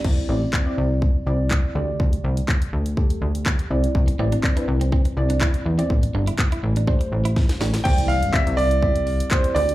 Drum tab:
CC |x---------------|----------------|----------------|----------------|
HH |----------------|-x-x-x-x-x-x-x-x|-x-x-x-x-x-x-x-x|-x-x-x-x-x-x-x-x|
CP |----x-------x---|----x-------x---|----x-------x---|----x-----------|
SD |----------------|----------------|----------------|------------oooo|
BD |o---o---o---o---|o---o---o---o---|o---o---o---o---|o---o---o---o---|

CC |x---------------|
HH |-xox-xox-xox-xox|
CP |----x-------x---|
SD |----------------|
BD |o---o---o---o---|